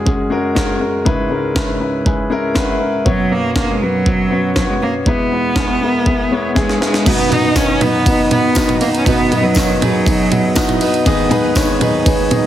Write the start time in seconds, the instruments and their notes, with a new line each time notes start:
Already playing: grand piano F#2 C#3 G#3 C#4 F#4 G#4 A#4
0.05 grand piano G#3 C#4 F#4 G#4, kick
0.30 grand piano G#3 C#4 F#4 A#4
0.55 grand piano G#3 C#4 F#4 A#4, kick, snare
0.80 grand piano G#3 C#4 F#4 A#4
1.05 grand piano C#2 G#2 G#3 C#4 E4 B4, kick
1.29 grand piano G#3 C#4 E4 A#4
1.55 grand piano G#3 C#4 E4, kick, snare
1.80 grand piano G#3 C#4 E4 B4 B5
2.05 grand piano G#3 C#4 E4 B4 G#5, kick
2.30 grand piano G#3 C#4 E4 A#4
2.54 grand piano G#3 C#4 E4 B4 F#5, kick, snare
2.68 grand piano E5
2.79 grand piano G#3 C#4 E4 A#4
3.04 grand piano B1 F#2 B3 C#4 F#4 C#5, cello F#3, kick
3.30 cello A#3, grand piano B3 C#4 F#4 C#5
3.55 cello A#3, grand piano B3 C#4 F#4 A#4, kick, snare
3.71 cello G#3
3.81 cello F#3, grand piano B3 C#4 F#4 B4
4.06 grand piano B3 C#4 F#4 C#5, kick
4.30 grand piano B3 C#4 F#4 C#5
4.55 cello F#3, grand piano B3 C#4 F#4 C#5, kick, snare
4.68 cello G#3
4.81 cello A#3, grand piano B3 C#4 F#4 C#5
5.05 grand piano E2 B2 G#3 B3 E4 B4, cello B3, kick
5.32 grand piano G#3 B3 E4 B4
5.56 grand piano G#3 B3 E4 G#4, kick, snare
5.81 grand piano G#3 B3 E4 A#4
6.06 grand piano G#3 B3 E4 G#4, kick
6.30 grand piano G#3 B3 E4 C#5
6.55 grand piano G#3 B3 E4 G#4 E5, kick, snare
6.59 cello G#3
6.69 snare
6.80 grand piano G#3 B3 E4 B4, cello G#3, snare
6.94 snare
7.05 grand piano B1 F#2 B3 D#4 F#4 D#5, steel-string acoustic guitar B2 F#3 B3 D#4 B4, french horn section D#3 D#4, cello B3, kick, crash, ride
7.29 steel-string acoustic guitar F#3 B3 D#4 B4, grand piano B3 D#4 F#4 D#5, floor tom, ride
7.33 cello D#4
7.43 steel-string acoustic guitar B3 D#4 B4
7.55 grand piano B3 D#4 F#4 D#5, cello C#4, kick, snare, ride, tambourine
7.80 steel-string acoustic guitar F#3 B3 D#4 B4, grand piano B3 D#4 F#4 D#5, cello B3, floor tom, ride
8.06 grand piano B3 D#4 F#4 D#5, kick, ride
8.30 grand piano B3 D#4 F#4, cello B3, floor tom, ride
8.55 steel-string acoustic guitar F#3 B3 D#4 B4, grand piano B3 D#4 F#4 D#5, kick, snare, ride, tambourine
8.69 floor tom, ride
8.81 steel-string acoustic guitar F#3 B3 D#4 B4, cello A#3, grand piano B3 D#4 F#4 D#5, ride
8.95 cello C#4, ride
9.05 grand piano B1 F#2 B3 D#4 F#4 D#5, steel-string acoustic guitar B2 F#3 B3 D#4 B4, cello B3, kick, ride
9.30 steel-string acoustic guitar F#3 B3 D#4 B4, grand piano B3 D#4 F#4 D#5, floor tom, ride
9.43 cello F#3, steel-string acoustic guitar B3 D#4 B4
9.55 grand piano B3 D#4 F#4 C#5, kick, snare, ride, tambourine
9.80 cello F#3, steel-string acoustic guitar F#3 B3 D#4 B4, grand piano B3 D#4 F#4 G#4, floor tom, ride
10.06 grand piano B3 D#4 F#4 D#5, kick, ride
10.31 grand piano B3 D#4 F#4 D#5, floor tom, ride
10.55 french horn section E3 E4, steel-string acoustic guitar F#3 B3 D#4 B4, grand piano B3 D#4 F#4 D#5, kick, snare, ride, tambourine
10.69 floor tom, ride
10.80 steel-string acoustic guitar F#3 B3 D#4 B4, grand piano B3 D#4 F#4 D#5, ride
10.94 ride
11.05 grand piano G#1 D#2 B3 D#4 G#4 D#5, steel-string acoustic guitar G#2 D#3 G#3 B3 D#4 B4, french horn section D#3 D#4, kick, ride
11.29 steel-string acoustic guitar G#3 B3 D#4 B4, grand piano B3 D#4 G#4 B4, floor tom, ride
11.44 steel-string acoustic guitar G#3 B3 D#4 B4
11.55 grand piano B3 D#4 G#4 C#5, kick, snare, ride, tambourine
11.79 steel-string acoustic guitar G#3 B3 D#4 B4, grand piano B3 D#4 G#4 D#5, floor tom, ride
12.05 grand piano B3 D#4 G#4 C#5, kick, ride
12.30 grand piano B3 D#4 G#4 D#5, floor tom, ride